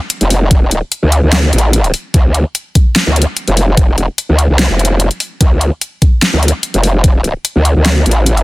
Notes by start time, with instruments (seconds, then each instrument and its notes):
0.10 closed hi-hat
0.21 wobble bass F1, closed hi-hat
0.30 open hi-hat
0.51 kick, closed hi-hat
0.71 closed hi-hat
0.92 closed hi-hat
1.03 wobble bass D2
1.12 closed hi-hat
1.23 wobble bass D2
1.32 snare, closed hi-hat
1.53 wobble bass A1, closed hi-hat
1.58 closed hi-hat
1.73 closed hi-hat
1.84 closed hi-hat
1.94 open hi-hat
2.14 wobble bass D2, kick, closed hi-hat
2.34 closed hi-hat
2.55 closed hi-hat
2.75 kick, closed hi-hat
2.96 snare, closed hi-hat
3.07 wobble bass D2
3.16 closed hi-hat
3.22 closed hi-hat
3.37 closed hi-hat
3.48 wobble bass F1, closed hi-hat
3.57 open hi-hat
3.77 kick, closed hi-hat
3.90 wobble bass E1
3.98 closed hi-hat
4.18 closed hi-hat
4.29 wobble bass D2
4.39 closed hi-hat
4.50 wobble bass C2
4.59 snare, closed hi-hat
4.70 wobble bass F1
4.79 closed hi-hat
4.85 closed hi-hat
5.00 closed hi-hat
5.11 closed hi-hat
5.20 open hi-hat
5.41 wobble bass D2, kick, closed hi-hat
5.61 closed hi-hat
5.81 closed hi-hat
6.02 kick, closed hi-hat
6.22 snare, closed hi-hat
6.33 wobble bass D2
6.43 closed hi-hat
6.48 closed hi-hat
6.63 closed hi-hat
6.74 wobble bass F1, closed hi-hat
6.83 open hi-hat
7.04 kick, closed hi-hat
7.24 closed hi-hat
7.45 closed hi-hat
7.56 wobble bass D2
7.65 closed hi-hat
7.76 wobble bass D2
7.86 snare, closed hi-hat
8.06 wobble bass A1, closed hi-hat
8.11 closed hi-hat
8.26 closed hi-hat
8.37 closed hi-hat